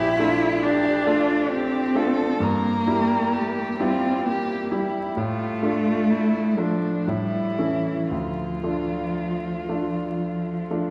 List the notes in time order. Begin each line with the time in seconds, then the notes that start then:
Already playing: A#1 E4 G4
0.19 A3 D4 F4
0.63 D4 G4
1.06 A3 D4 F4
1.49 C4 G4
1.95 A3 D4 F4 A4
2.40 G2 A#3 A#4
2.87 G3 E4 G4
3.33 G4
3.79 G3 C4 E4 F4 G4
4.25 A#3 G4
4.72 G3 E4 G4
5.15 A2 A3 F4
5.63 A3 D4 F4
6.09 E4
6.56 F3 A3 D4 F4
7.07 A2 G3 E4
7.58 E3 A3 C#4 E4
8.11 D2 F3 F4
8.64 A3 D4 F4
9.69 A3 D4 F4
10.21 F3
10.71 A3 D4 F4